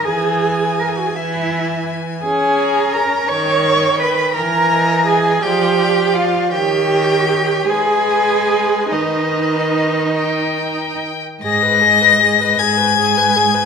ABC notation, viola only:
X:1
M:6/8
L:1/16
Q:3/8=54
K:Elyd
V:1 name="Viola"
E,6 E,6 | [K:G#m] C6 D,6 | E,6 =F,6 | D,6 G,6 |
D,8- D,3 z | G B G B G B G B G B G B |]